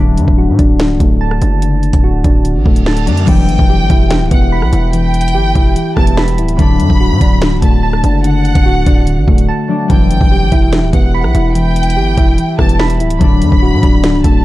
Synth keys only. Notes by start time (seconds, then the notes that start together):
Already playing: D3
0.38 F#4
0.59 D4
0.79 D3
1.01 A3
1.21 A5
1.42 D4
1.62 D3
2.04 F#4
2.25 D4
2.44 D3
2.66 A3
2.87 A5
3.07 D4
3.29 E3
3.70 G4
3.90 E4
4.10 E3
4.31 B3
4.52 B5
4.73 E4
4.93 E3
5.35 G4
5.55 E4
5.76 E3
5.98 B3
6.17 B5
6.39 E4
6.59 D3
7.00 F#4
7.21 D4
7.41 D3
7.63 A3
7.83 A5
8.04 D4
8.24 D3
8.66 F#4
8.87 D4
9.06 D3
9.28 A3
9.49 A5
9.69 D4
9.90 E3
10.32 G4
10.52 E4
10.72 E3
10.93 B3
11.14 B5
11.35 E4
11.55 E3
11.97 G4
12.17 E4
12.38 E3
12.60 B3
12.79 B5
13.01 E4
13.21 D3
13.62 F#4
13.83 D4
14.03 D3
14.25 A3